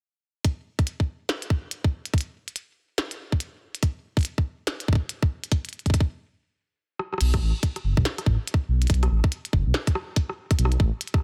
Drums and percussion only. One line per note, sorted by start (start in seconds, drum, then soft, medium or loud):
0.45 kick loud
0.45 closed hi-hat medium
0.79 kick loud
0.79 closed hi-hat soft
0.87 closed hi-hat medium
1.00 kick medium
1.29 snare loud
1.29 closed hi-hat medium
1.42 closed hi-hat soft
1.50 kick loud
1.71 closed hi-hat medium
1.84 kick loud
2.06 closed hi-hat medium
2.14 kick loud
2.14 closed hi-hat soft
2.18 closed hi-hat soft
2.21 closed hi-hat medium
2.48 closed hi-hat soft
2.56 closed hi-hat medium
2.98 snare loud
2.98 closed hi-hat medium
3.11 closed hi-hat soft
3.32 kick medium
3.40 closed hi-hat medium
3.75 closed hi-hat medium
3.83 kick loud
3.83 closed hi-hat medium
4.17 kick loud
4.17 closed hi-hat soft
4.19 closed hi-hat soft
4.21 closed hi-hat soft
4.23 closed hi-hat soft
4.25 closed hi-hat medium
4.38 kick medium
4.67 snare loud
4.67 closed hi-hat medium
4.80 closed hi-hat soft
4.88 kick loud
4.93 kick medium
4.95 kick medium
5.09 closed hi-hat medium
5.23 kick loud
5.44 closed hi-hat medium
5.52 kick loud
5.52 closed hi-hat medium
5.65 closed hi-hat soft
5.69 closed hi-hat soft
5.73 closed hi-hat soft
5.79 closed hi-hat soft
5.86 kick medium
5.86 closed hi-hat soft
5.90 kick medium
5.90 closed hi-hat medium
5.94 kick medium
6.00 kick loud
6.99 cross-stick medium
7.13 cross-stick soft
7.18 cross-stick medium
7.18 closed hi-hat medium
7.18 crash medium
7.34 kick loud
7.34 cross-stick medium
7.34 closed hi-hat soft
7.63 kick loud
7.63 closed hi-hat medium
7.76 cross-stick soft
7.76 closed hi-hat soft
7.97 kick loud
8.05 snare loud
8.05 closed hi-hat medium
8.18 cross-stick medium
8.18 closed hi-hat medium
8.26 kick loud
8.47 closed hi-hat medium
8.54 kick loud
8.82 closed hi-hat soft
8.87 kick loud
8.87 closed hi-hat soft
8.90 closed hi-hat medium
8.94 closed hi-hat soft
9.03 cross-stick medium
9.03 closed hi-hat soft
9.24 kick loud
9.32 closed hi-hat medium
9.45 closed hi-hat soft
9.53 kick loud
9.74 snare loud
9.87 kick loud
9.87 closed hi-hat medium
9.95 cross-stick medium
10.16 kick loud
10.16 closed hi-hat medium
10.29 cross-stick soft
10.51 kick loud
10.51 cross-stick soft
10.51 closed hi-hat medium
10.59 closed hi-hat medium
10.65 cross-stick medium
10.72 closed hi-hat soft
10.80 kick loud
11.01 closed hi-hat medium
11.07 closed hi-hat soft
11.14 kick loud
11.14 cross-stick soft
11.16 cross-stick soft
11.18 cross-stick soft
11.20 cross-stick soft